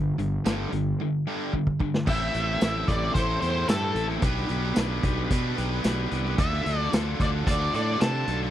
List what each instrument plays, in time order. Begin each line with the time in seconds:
Already playing: fingered electric bass G1, distorted electric guitar G2 D3
0.18 fingered electric bass G1, distorted electric guitar G2 D3, closed hi-hat
0.46 fingered electric bass G1, distorted electric guitar G2 D3 G3, snare, closed hi-hat, tambourine
0.72 fingered electric bass G1, distorted electric guitar G2 D3, closed hi-hat
1.01 distorted electric guitar G2 D3
1.27 distorted electric guitar G2 D3 G3
1.53 distorted electric guitar G2 D3, kick
1.67 kick
1.80 distorted electric guitar G2 D3, kick
1.94 snare
2.07 fingered electric bass A1, distorted electric guitar A2 A3 C4 E4 A4, lead electric guitar E5, kick, crash
2.34 fingered electric bass A1, distorted electric guitar C4 E4 A4, closed hi-hat
2.61 fingered electric bass A1, distorted electric guitar A3 C4 E4 A4, snare, closed hi-hat, tambourine
2.86 fingered electric bass A1, distorted electric guitar A2 A3 C4 E4 A4, lead electric guitar D5, kick, closed hi-hat
3.14 fingered electric bass A1, overdriven electric guitar A2, distorted electric guitar A3 C4 E4 A4, lead electric guitar C5, kick, closed hi-hat
3.41 fingered electric bass E2, distorted electric guitar C4 E4 A4, lead electric guitar C5, closed hi-hat
3.68 fingered electric bass G2, distorted electric guitar A2 A3 C4 E4 A4, lead electric guitar A4, snare, closed hi-hat, tambourine
3.95 fingered electric bass A1, distorted electric guitar C4 E4 A4, closed hi-hat
4.09 snare
4.22 fingered electric bass B1, distorted electric guitar B3 D4 G4, kick, closed hi-hat
4.26 distorted electric guitar B4
4.37 snare
4.49 fingered electric bass B1, distorted electric guitar G4 B4, closed hi-hat
4.53 distorted electric guitar D4
4.76 fingered electric bass B1, distorted electric guitar B3 D4 G4 B4, snare, closed hi-hat, tambourine
5.03 fingered electric bass B1, distorted electric guitar B3 D4 G4 B4, kick, closed hi-hat
5.30 fingered electric bass B2, distorted electric guitar B3 D4 G4 B4, kick, closed hi-hat
5.58 fingered electric bass B1, distorted electric guitar D4 G4 B4, closed hi-hat
5.84 fingered electric bass B1, distorted electric guitar B3 D4 G4 B4, snare, closed hi-hat, tambourine
6.11 fingered electric bass C2, distorted electric guitar D4 G4 B4, closed hi-hat
6.26 snare
6.38 fingered electric bass D2, distorted electric guitar D3 D4 F4 A4, lead electric guitar E5, kick, closed hi-hat
6.53 snare
6.65 fingered electric bass D2, distorted electric guitar D4 F4 A4, closed hi-hat
6.93 fingered electric bass D2, distorted electric guitar D3 D4 F4 A4, snare, closed hi-hat, tambourine
7.20 fingered electric bass D2, distorted electric guitar D3 D4 F4 A4, lead electric guitar D5, kick, closed hi-hat
7.45 fingered electric bass D2, distorted electric guitar D3 D4 F4 A4, lead electric guitar D5, kick, closed hi-hat
7.74 fingered electric bass A2, distorted electric guitar D4 F4 A4, lead electric guitar D5, closed hi-hat
8.01 fingered electric bass C3, distorted electric guitar D3 D4 F4 A4, lead electric guitar A5, snare, closed hi-hat, tambourine
8.27 fingered electric bass B1, distorted electric guitar D4 F4 A4, closed hi-hat
8.42 snare